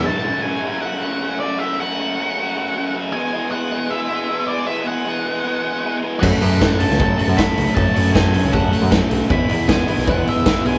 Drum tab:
CC |----------------|----------------|----------------|----------------|
HH |----------------|----------------|----------------|----------------|
SD |----------------|----------------|----------------|----------------|
BD |----------------|----------------|----------------|----------------|

CC |x---------------|----------------|----------------|
HH |--o---o---o---o-|--o---o---o---o-|--o---o---o---o-|
SD |----o--o----o---|----o-------o---|----o--o----o---|
BD |o---o---o---o---|o---o---o---o---|o---o---o---o---|